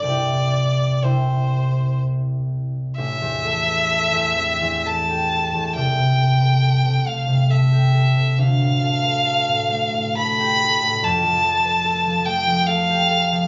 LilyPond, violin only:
\new Staff \with { instrumentName = "Violin" } { \time 3/4 \key c \major \tempo 4 = 68 d''4 c''4 r4 | \key a \minor e''2 a''4 | g''4. f''8 e''4 | f''2 b''4 |
a''4. g''8 f''4 | }